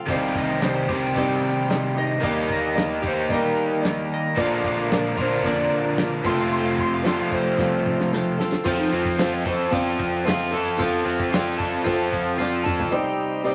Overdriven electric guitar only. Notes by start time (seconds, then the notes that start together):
0.06 C3 D#3 G3 C4 G4
0.89 C3 D#3 G3 C4 G4
2.20 D#3 A#3 D#4
2.25 G4
3.02 D#3 A#3 D#4 G4
4.35 A#2 D3 A#3 D4 F4
5.17 A#2 D3 A#3 D4 F4
6.24 F2 C3 F3 A3 C4 F4
7.04 F2 C3 F3 A3 C4 F4
8.67 F3
8.92 C4
9.19 F4
9.44 A4
9.73 F4
9.99 F3
10.26 F4
10.53 A4
10.79 F3
11.05 C4
11.32 F4
11.58 A4
11.85 F4
12.11 F3
12.38 F4
12.64 A4